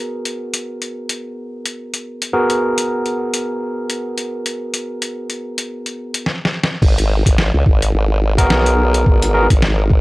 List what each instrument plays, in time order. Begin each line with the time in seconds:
Already playing: tine electric piano B3 F#4 G#4 A#4
0.25 closed hi-hat
0.54 closed hi-hat
0.82 closed hi-hat
1.09 closed hi-hat
1.65 closed hi-hat
1.94 closed hi-hat
2.22 closed hi-hat
2.33 tine electric piano B3 F#4 G#4 A#4
2.50 closed hi-hat
2.78 closed hi-hat
3.06 closed hi-hat
3.34 closed hi-hat
3.90 closed hi-hat
4.18 closed hi-hat
4.46 closed hi-hat
4.74 closed hi-hat
5.02 closed hi-hat
5.30 closed hi-hat
5.58 closed hi-hat
5.86 closed hi-hat
6.14 closed hi-hat
6.26 snare
6.45 snare
6.63 snare
6.82 wobble bass G#1, kick, crash
6.98 closed hi-hat
7.26 wobble bass G#1, kick, closed hi-hat
7.38 snare
7.54 wobble bass C#2
7.66 wobble bass G#1, kick
7.82 closed hi-hat
7.94 wobble bass G#1
8.38 tine electric piano B3 F#4 G#4 A#4, kick, closed hi-hat
8.50 wobble bass B1, snare
8.66 closed hi-hat
8.94 closed hi-hat
9.06 wobble bass G#1, kick
9.22 closed hi-hat
9.34 tine electric piano B3 F#4 G#4 A#4
9.50 wobble bass G#1, kick, closed hi-hat
9.62 snare
9.90 kick